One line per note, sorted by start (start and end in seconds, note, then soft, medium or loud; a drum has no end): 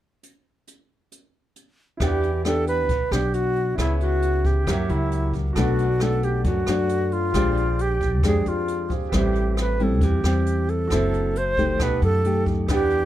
0.23 closed hi-hat soft
0.67 closed hi-hat soft
1.12 closed hi-hat soft
1.56 closed hi-hat soft
1.97 2.89 E2 medium
1.97 2.87 E3 soft
1.97 2.29 B3 soft
1.97 3.73 E4 soft
1.97 3.74 B4 soft
1.97 kick medium
1.97 cross-stick medium
1.97 closed hi-hat soft
2.01 2.30 D4 medium
2.01 2.42 G4 medium
2.01 2.30 G4 soft
2.01 3.75 D5 soft
2.01 3.76 F#5 medium
2.23 closed hi-hat soft
2.45 2.89 B3 medium
2.45 2.89 D4 medium
2.45 2.89 G4 medium
2.45 2.67 A4 loud
2.45 cross-stick medium
2.45 closed hi-hat soft
2.67 3.14 B4 medium
2.67 closed hi-hat soft
2.89 3.10 B1 medium
2.89 3.76 B2 soft
2.89 kick medium
2.89 closed hi-hat soft
3.11 3.74 B1 medium
3.11 3.75 B3 soft
3.11 3.75 D4 medium
3.11 3.36 G4 medium
3.11 cross-stick medium
3.11 closed hi-hat soft
3.34 3.78 F#4 loud
3.34 closed hi-hat soft
3.56 closed hi-hat soft
3.75 4.69 C#2 medium
3.75 4.65 C#3 medium
3.75 4.64 B3 soft
3.75 4.64 E4 soft
3.75 3.99 E4 medium
3.75 4.65 B4 soft
3.75 kick medium
3.75 cross-stick medium
3.75 closed hi-hat soft
3.79 4.64 E4 medium
3.79 4.66 C#5 soft
3.79 4.67 E5 medium
4.01 4.48 F#4 medium
4.01 closed hi-hat soft
4.22 closed hi-hat soft
4.45 4.92 G4 medium
4.45 kick medium
4.45 closed hi-hat soft
4.64 4.88 F#2 medium
4.64 5.54 F#3 medium
4.64 5.52 A#3 medium
4.64 5.53 E4 medium
4.64 5.53 G4 medium
4.64 5.54 A#4 soft
4.64 5.55 C#5 soft
4.64 kick medium
4.64 cross-stick medium
4.64 closed hi-hat soft
4.68 5.53 G4 medium
4.68 5.56 E5 medium
4.89 5.52 C#2 medium
4.89 5.34 E4 medium
4.89 closed hi-hat soft
5.12 closed hi-hat soft
5.34 kick medium
5.34 closed hi-hat soft
5.53 6.46 B1 loud
5.53 6.43 B2 soft
5.53 5.85 D4 medium
5.53 7.29 F#4 soft
5.53 7.30 A4 soft
5.53 kick medium
5.53 cross-stick medium
5.53 closed hi-hat soft
5.57 5.85 A3 soft
5.57 5.85 F#4 medium
5.57 6.04 F#4 medium
5.57 7.31 B4 soft
5.57 7.32 D5 medium
5.78 closed hi-hat soft
6.00 6.64 A3 medium
6.00 6.65 D4 medium
6.00 6.65 F#4 medium
6.00 6.26 A4 loud
6.00 cross-stick medium
6.00 closed hi-hat soft
6.23 6.45 G4 medium
6.23 closed hi-hat soft
6.44 6.66 F#2 medium
6.44 7.32 F#2 medium
6.44 7.14 F#4 medium
6.44 kick medium
6.44 closed hi-hat soft
6.67 7.30 F#2 medium
6.67 7.31 A3 medium
6.67 7.31 D4 medium
6.67 7.31 F#4 medium
6.67 cross-stick medium
6.67 closed hi-hat soft
6.89 closed hi-hat soft
7.12 7.83 F4 loud
7.12 closed hi-hat soft
7.31 8.23 A#1 loud
7.31 8.21 A#2 medium
7.31 7.94 G#3 soft
7.31 7.94 D4 soft
7.31 8.85 G4 soft
7.31 7.94 G4 medium
7.31 kick medium
7.31 cross-stick medium
7.31 closed hi-hat soft
7.35 8.87 C5 soft
7.35 8.88 D5 medium
7.57 closed hi-hat soft
7.79 8.24 G4 medium
7.79 closed hi-hat soft
8.01 kick medium
8.01 closed hi-hat soft
8.23 8.44 F2 medium
8.23 9.11 F2 medium
8.23 9.09 G#3 medium
8.23 9.10 D4 medium
8.23 9.10 G4 medium
8.23 8.50 G#4 medium
8.23 kick medium
8.23 cross-stick medium
8.23 closed hi-hat soft
8.46 9.09 F2 medium
8.46 8.91 F4 medium
8.46 closed hi-hat soft
8.68 closed hi-hat soft
8.89 9.08 G4 soft
8.89 9.12 G#4 soft
8.89 9.12 C5 soft
8.89 9.13 F5 soft
8.89 kick medium
8.89 closed hi-hat soft
9.09 10.01 A1 loud
9.09 9.99 A2 soft
9.09 9.76 G3 soft
9.09 9.76 C4 medium
9.09 10.85 G4 medium
9.09 10.86 B4 soft
9.09 kick medium
9.09 cross-stick medium
9.09 closed hi-hat soft
9.13 9.76 E4 medium
9.13 9.56 G4 medium
9.13 10.87 C5 soft
9.13 10.88 E5 medium
9.35 closed hi-hat soft
9.57 9.85 B4 medium
9.57 cross-stick medium
9.57 closed hi-hat soft
9.80 10.20 G3 medium
9.80 10.21 C4 medium
9.80 10.21 E4 medium
9.80 10.06 A4 medium
9.80 closed hi-hat soft
10.01 10.22 E2 medium
10.01 10.89 E3 medium
10.01 10.71 G4 medium
10.01 kick medium
10.01 closed hi-hat soft
10.24 10.86 E2 medium
10.24 10.87 G3 medium
10.24 10.87 C4 medium
10.24 10.88 E4 medium
10.24 cross-stick medium
10.24 closed hi-hat soft
10.46 closed hi-hat soft
10.68 11.39 A4 medium
10.68 closed hi-hat soft
10.87 11.80 F#1 medium
10.87 11.78 F#3 medium
10.87 11.76 F#4 medium
10.87 11.77 A4 soft
10.87 kick medium
10.87 cross-stick medium
10.87 closed hi-hat soft
10.92 11.35 C4 soft
10.92 11.35 E4 medium
10.92 11.36 A4 medium
10.92 11.78 C5 soft
10.92 11.79 E5 medium
11.14 closed hi-hat soft
11.35 11.84 C5 loud
11.35 closed hi-hat soft
11.57 12.21 A3 medium
11.57 12.21 D#4 medium
11.57 12.21 G4 medium
11.57 kick medium
11.57 closed hi-hat soft
11.77 12.00 B1 medium
11.77 12.67 B2 medium
11.77 12.65 G4 medium
11.77 12.66 A4 soft
11.77 kick medium
11.77 cross-stick medium
11.77 closed hi-hat soft
11.81 12.03 B4 medium
11.81 12.67 D#5 soft
11.81 12.68 F#5 medium
12.02 12.65 F#2 medium
12.02 12.45 A4 medium
12.02 closed hi-hat soft
12.24 12.65 A3 medium
12.24 12.66 D#4 medium
12.24 12.66 G4 medium
12.24 closed hi-hat soft
12.46 kick medium
12.46 closed hi-hat soft
12.67 13.05 E2 loud
12.67 13.05 E3 medium
12.67 13.05 B3 medium
12.67 13.05 D4 medium
12.67 13.05 G4 soft
12.67 13.05 B4 medium
12.67 kick medium
12.67 cross-stick medium
12.67 closed hi-hat soft
12.71 13.05 G4 medium
12.71 13.05 G4 loud
12.71 13.05 D5 soft
12.71 13.05 F#5 soft
12.90 closed hi-hat soft